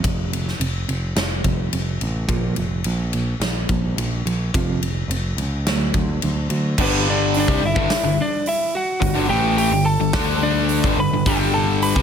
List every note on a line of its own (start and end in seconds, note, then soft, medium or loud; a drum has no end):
0.03 0.52 F1 loud
0.03 0.29 F2 medium
0.03 kick loud
0.03 ride medium
0.32 0.57 F2 medium
0.32 0.58 C3 medium
0.32 ride medium
0.48 snare soft
0.60 0.84 F1 medium
0.60 0.85 F2 medium
0.60 0.85 C3 medium
0.60 ride medium
0.88 1.13 F1 medium
0.88 1.13 F2 medium
0.88 1.14 C3 medium
0.88 ride medium
1.16 1.40 F1 medium
1.16 1.42 F2 medium
1.16 1.42 C3 medium
1.16 snare loud
1.16 ride medium
1.44 1.68 F1 medium
1.44 1.69 F2 medium
1.44 1.70 C3 medium
1.44 kick medium
1.44 ride medium
1.73 1.97 F1 medium
1.73 1.98 F2 medium
1.73 1.98 C3 medium
1.73 ride medium
2.00 2.25 A1 medium
2.00 2.26 F2 medium
2.00 2.26 C3 medium
2.00 ride medium
2.28 2.52 A#1 loud
2.28 2.55 A#2 medium
2.28 2.55 F3 medium
2.28 2.55 A#3 medium
2.28 kick loud
2.28 ride medium
2.56 2.82 F1 medium
2.56 2.82 A#2 medium
2.56 2.82 F3 medium
2.56 ride medium
2.84 3.33 A#1 medium
2.84 3.11 A#2 medium
2.84 3.11 F3 medium
2.84 ride medium
3.13 3.39 A#2 medium
3.13 3.39 F3 medium
3.13 ride medium
3.40 3.65 A#1 loud
3.40 3.67 A#2 medium
3.40 3.67 F3 medium
3.40 snare loud
3.40 ride medium
3.69 3.93 A#1 medium
3.69 3.95 A#2 medium
3.69 3.95 F3 medium
3.69 kick medium
3.69 ride medium
3.96 4.21 A#1 medium
3.96 4.23 A#2 medium
3.96 4.23 F3 medium
3.96 ride medium
4.25 4.50 A#1 medium
4.25 4.51 A#2 medium
4.25 4.51 F3 medium
4.25 ride medium
4.54 5.02 F1 loud
4.54 4.80 F2 medium
4.54 4.81 C3 medium
4.54 4.81 F3 medium
4.54 kick loud
4.54 ride medium
4.82 ride medium
5.08 5.33 F1 medium
5.08 5.36 F2 medium
5.08 5.36 C3 medium
5.08 ride medium
5.37 5.65 C#2 medium
5.37 5.63 F2 medium
5.37 5.64 C3 medium
5.37 ride medium
5.65 5.90 D2 medium
5.65 5.93 D3 medium
5.65 5.93 F#3 medium
5.65 5.93 A3 medium
5.65 snare loud
5.65 ride medium
5.94 6.18 D2 medium
5.94 6.20 D3 medium
5.94 6.20 F#3 medium
5.94 kick medium
5.94 ride medium
6.22 6.47 D2 medium
6.22 6.48 D3 medium
6.22 6.48 F#3 medium
6.22 ride medium
6.50 6.74 D2 medium
6.50 6.76 D3 medium
6.50 6.76 F#3 medium
6.50 ride medium
6.78 7.44 G1 loud
6.78 7.48 G2 loud
6.78 7.48 D3 loud
6.78 7.48 G3 loud
6.78 7.06 B3 medium
6.78 kick loud
6.78 crash loud
6.84 7.10 B4 medium
7.08 7.33 D4 medium
7.08 7.37 D5 medium
7.34 7.62 D4 medium
7.34 open hi-hat medium
7.40 7.66 D5 medium
7.48 7.61 C2 loud
7.48 7.62 C3 medium
7.48 7.62 G3 loud
7.48 kick loud
7.62 7.75 G1 medium
7.62 7.75 G2 medium
7.62 7.76 D3 medium
7.62 8.16 E4 medium
7.67 8.22 E5 medium
7.76 7.89 G1 medium
7.76 7.89 G2 medium
7.76 7.90 D3 medium
7.76 kick loud
7.90 muted overdriven electric guitar stroke medium
7.90 snare loud
7.90 open hi-hat medium
8.03 8.17 G1 medium
8.03 8.18 G2 medium
8.03 8.19 D3 medium
8.21 8.46 D4 medium
8.21 8.46 D5 medium
8.46 8.73 E4 medium
8.46 8.76 E5 loud
8.46 open hi-hat medium
8.75 9.27 F#4 medium
8.75 9.30 F#5 medium
9.01 9.15 G1 medium
9.01 9.13 G2 medium
9.01 9.14 D3 medium
9.01 kick loud
9.01 open hi-hat medium
9.14 9.29 G1 loud
9.14 9.29 G2 medium
9.14 9.29 D3 loud
9.29 9.69 A1 medium
9.29 9.71 A2 medium
9.29 9.71 E3 medium
9.29 9.72 A3 loud
9.29 9.56 G4 medium
9.29 9.57 G5 loud
9.57 9.84 G4 medium
9.57 9.87 G5 medium
9.57 open hi-hat medium
9.71 9.98 G1 medium
9.71 9.95 G2 medium
9.71 9.95 D3 medium
9.85 10.38 A4 medium
9.85 10.38 A5 medium
9.99 10.13 G1 medium
9.99 10.14 G2 medium
9.99 10.12 D3 medium
10.13 10.80 D2 loud
10.13 10.83 D3 medium
10.13 10.83 A3 medium
10.13 10.84 D4 loud
10.13 kick loud
10.13 snare loud
10.13 open hi-hat medium
10.43 10.95 D4 medium
10.43 10.99 D5 medium
10.69 open hi-hat medium
10.84 10.96 G1 loud
10.84 10.98 G2 loud
10.84 10.98 D3 loud
10.84 kick loud
10.97 11.10 G1 medium
10.97 11.12 G2 medium
10.97 11.13 D3 medium
10.97 11.25 B4 medium
10.97 11.25 B5 medium
11.11 11.25 G1 medium
11.11 11.25 G2 medium
11.11 11.26 D3 medium
11.26 11.92 G1 loud
11.26 11.96 G2 loud
11.26 11.96 D3 medium
11.26 11.95 G3 loud
11.26 11.53 G4 medium
11.26 11.55 G5 loud
11.26 kick loud
11.26 open hi-hat medium
11.54 11.80 A4 medium
11.54 11.82 A5 medium
11.82 12.02 B4 medium
11.82 12.02 B5 loud
11.82 open hi-hat medium
11.96 12.02 C2 medium
11.96 12.02 C3 loud
11.96 12.02 G3 loud
11.96 kick loud